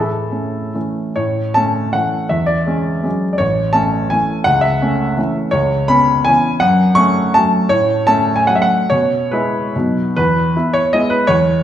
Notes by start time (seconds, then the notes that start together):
Already playing: A2
0.00 E4 A4
0.31 A3 C#4
0.74 E3 A3 C#4
1.16 A2 C#5
1.54 A3 C#4 A5
1.93 E3 A3 C#4 F#5
2.29 E2 E5
2.46 D5
2.67 G#3 C#4
3.03 F#3 G#3 C#4
3.33 D5
3.38 A1 C#5
3.73 A3 C#4 A5
4.10 E3 A3 C#4 G#5
4.44 C#2 F#5
4.61 E5
4.82 A3 C#4
5.17 E3 A3 C#4
5.51 C#2 C#5
5.88 B3 C#4 B5
6.25 E3 B3 C#4 G#5
6.60 F#2 F#5
6.95 A3 C#4 C#6
7.34 F#3 A3 C#4 A5
7.69 A2 C#5
8.07 A3 C#4 A5
8.36 G#5
8.47 F#3 A3 C#4 F#5
8.55 E5
8.62 F#5
8.90 B2 C#5
9.31 G#3 E4 B4
9.76 B2 F#3 B3 D#4
10.16 E2 B4
10.56 B3 E4
10.73 C#5
10.93 G#3 B3 E4 D#5
11.10 B4
11.27 E2 C#5